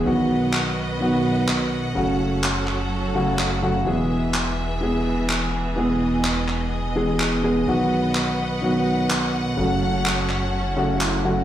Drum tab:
CP |--x---x-|--xx--x-|--x---x-|--xx--x-|

CP |--x---x-|--xx--x-|